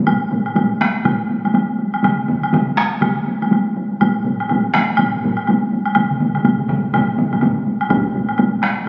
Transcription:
0.06 taiko low-mid, taiko high, high woodblock
0.21 taiko high
0.31 taiko low-mid, taiko high
0.46 taiko high, high woodblock
0.56 taiko low-mid, taiko high, high woodblock
0.71 taiko high
0.80 taiko rim, taiko high, high woodblock
0.96 taiko high
1.05 taiko low-mid, taiko high, high woodblock
1.20 taiko high
1.30 taiko high
1.45 taiko high, high woodblock
1.54 taiko high, high woodblock
1.70 taiko high
1.79 taiko high
1.93 taiko high, high woodblock
2.03 taiko mid, taiko high, high woodblock
2.19 taiko high
2.28 taiko mid, taiko high
2.43 high woodblock
2.53 taiko mid, taiko high, high woodblock
2.67 taiko high
2.77 taiko rim, taiko high, high woodblock
2.92 taiko high
3.02 taiko mid, taiko high, high woodblock
3.17 taiko high
3.27 taiko high
3.42 taiko high, high woodblock
3.51 taiko high, high woodblock
3.67 taiko high
3.76 taiko high
3.91 taiko high
4.00 taiko low-mid, taiko high, high woodblock
4.17 taiko high
4.24 taiko low-mid, taiko high
4.40 taiko high, high woodblock
4.49 taiko low-mid, taiko high, high woodblock
4.65 taiko high
4.74 taiko rim, taiko high, high woodblock
4.90 taiko high
4.97 taiko low-mid, taiko high, high woodblock
5.13 taiko low-mid, taiko high
5.24 taiko low-mid, taiko high
5.37 high woodblock
5.47 taiko high, high woodblock
5.64 taiko high
5.72 taiko high
5.86 taiko high, high woodblock
5.95 taiko low-mid, taiko mid, taiko high, high woodblock
6.11 taiko low-mid, taiko mid, taiko high
6.20 taiko low-mid, taiko mid, taiko high
6.35 taiko low-mid, taiko mid, taiko high, high woodblock
6.45 taiko low-mid, taiko mid, taiko high, high woodblock
6.60 taiko low-mid, taiko mid, taiko high
6.68 taiko low-mid, taiko mid, taiko high, high woodblock
6.84 taiko high
6.93 taiko low-mid, taiko mid, taiko high, high woodblock
7.09 taiko high
7.18 taiko low-mid, taiko mid, taiko high
7.31 taiko low-mid, taiko mid, taiko high, high woodblock
7.41 taiko low-mid, taiko mid, taiko high, high woodblock
7.58 taiko high
7.67 taiko high
7.81 taiko high, high woodblock
7.89 taiko, taiko low-mid, taiko high, high woodblock
8.06 taiko high
8.14 taiko low-mid, taiko high
8.29 taiko high, high woodblock
8.38 taiko low-mid, taiko high, high woodblock
8.53 taiko high
8.62 taiko rim, taiko high, high woodblock
8.78 taiko high

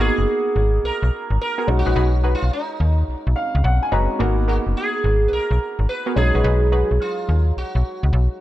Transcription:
Already playing: G#1 A#3 B3 D#4 F#4
0.00 B3 F#4 G#4 A#4
0.18 F#1
0.56 G#1
0.84 B1 A#4
1.03 B1
1.30 G#1
1.41 A#4
1.58 B3 F#4 G#4 A#4
1.67 B1 G#3 C#4 D#4 F#4
1.79 F#4
1.86 A#1 D#4 F#4 G#4 B4
1.96 B1 D#4 F#4 G#4 B4
2.24 D#4 F#4 G#4 B4
2.35 F4
2.43 B1
2.53 D#4
2.80 D#2
3.08 B1
3.27 B1
3.36 F5
3.55 C#2
3.64 B1 F#5
3.83 G#5
3.91 F#1 G#3 C#4 D#4 F#4 G#4 B4 A#5
4.19 G#1 A#3 B3 D#4 F#4 G#4 A#4
4.48 B3 F#4 G#4 A#4
4.67 F#1
4.77 G#4
5.04 G#1
5.28 B4
5.32 B1 A#4
5.51 B1
5.79 G#1
5.89 B4
6.06 B3 F#4 G#4 A#4
6.15 B1 F#3 G#3 C#4 D#4 G#4
6.34 A#1 D#4 F#4 G#4 B4
6.44 B1 D#4 F#4 G#4 B4
6.72 D#4 F#4 G#4 B4
6.91 B1
7.02 F4
7.29 D#2
7.57 B1 F#4
7.75 B1
8.03 C#2
8.13 B1

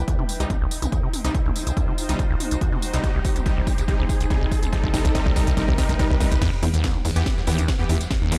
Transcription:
Already playing: D#4 C5 G5, riser
0.08 D#2, kick, closed hi-hat, tambourine
0.19 C3, mid tom
0.29 open hi-hat, tambourine
0.40 C2 C3 G3 D#4, closed hi-hat, tambourine
0.50 C2, kick, closed hi-hat, mid tom, tambourine
0.61 C2
0.71 open hi-hat, tambourine
0.82 C2, closed hi-hat, mid tom, tambourine
0.92 D#2, kick, closed hi-hat, tambourine
1.03 C3
1.13 open hi-hat, mid tom, tambourine
1.25 C2 C3 G3 D#4, closed hi-hat, tambourine
1.35 C2, kick, closed hi-hat, tambourine
1.46 C2, mid tom
1.56 open hi-hat, tambourine
1.67 C2, closed hi-hat, tambourine
1.77 D#2, kick, closed hi-hat, mid tom, tambourine
1.88 C3
1.98 open hi-hat, tambourine
2.09 C2 C3 G3 D#4, closed hi-hat, mid tom, tambourine
2.19 C2, kick, closed hi-hat, tambourine
2.30 C2
2.40 open hi-hat, mid tom, tambourine
2.51 C2, closed hi-hat, tambourine
2.61 D#2, kick, closed hi-hat, tambourine
2.72 C3, mid tom
2.82 open hi-hat, tambourine
2.93 C2 C3 G3 D#4, closed hi-hat, tambourine
3.04 C2 C3 G3 D#4, kick, closed hi-hat, mid tom, tambourine
3.15 C2
3.25 kick, open hi-hat, tambourine
3.36 C2, closed hi-hat, mid tom, tambourine
3.46 C2 C3 G3 D#4, kick, closed hi-hat, tambourine
3.57 C2
3.67 kick, open hi-hat, mid tom, tambourine
3.78 C2, closed hi-hat, tambourine
3.88 C2 C3 G3 D#4, kick, closed hi-hat, tambourine
3.99 C2, mid tom
4.09 kick, open hi-hat, tambourine
4.20 C2, closed hi-hat, tambourine
4.30 C2 C3 G3 D#4, kick, closed hi-hat, mid tom, tambourine
4.41 C2
4.51 kick, open hi-hat, tambourine
4.62 C2, closed hi-hat, mid tom, tambourine
4.72 C2 C3 G3 D#4, kick, closed hi-hat, tambourine
4.83 C2, kick
4.94 C2 C3 G3 D#4, kick, open hi-hat, mid tom, tambourine
5.05 C2, kick, closed hi-hat, tambourine
5.15 C2 C3 G3 D#4, kick, closed hi-hat, tambourine
5.26 C2, kick, mid tom
5.36 C2 C3 G3 D#4, kick, open hi-hat, tambourine
5.47 C2, kick, closed hi-hat, tambourine
5.57 C2 C3 G3 D#4, kick, closed hi-hat, mid tom, tambourine
5.68 C2, kick
5.78 C2 C3 G3 D#4, kick, open hi-hat, tambourine
5.89 C2, kick, closed hi-hat, mid tom, tambourine
5.99 C2 C3 G3 D#4, kick, closed hi-hat, tambourine
6.10 C2, kick
6.20 C2 C3 G3 D#4, kick, open hi-hat, mid tom, tambourine
6.31 C2, kick, closed hi-hat, tambourine
6.41 E2, kick, snare, closed hi-hat, crash, ride, tambourine, sub drop
6.53 ride
6.63 E2, open hi-hat, mid tom, ride, tambourine
6.73 D#2, snare, closed hi-hat, tambourine
6.84 kick, snare, closed hi-hat, ride, tambourine
6.95 F#2, mid tom
7.04 E2, open hi-hat, tambourine
7.16 E2 E3 B3 G4, closed hi-hat, tambourine
7.26 kick, snare, closed hi-hat, mid tom, ride, tambourine
7.36 E2, snare
7.47 D#2 E2 E3 B3 G4, open hi-hat, ride, tambourine
7.58 closed hi-hat, mid tom, tambourine
7.68 F#2, kick, snare, closed hi-hat, ride, tambourine
7.79 E2 E3 B3 G4
7.89 E2, open hi-hat, mid tom, ride, tambourine
8.01 snare, closed hi-hat, tambourine
8.11 E2, kick, snare, closed hi-hat, ride
8.22 D#2, mid tom
8.32 E2, open hi-hat, ride, tambourine

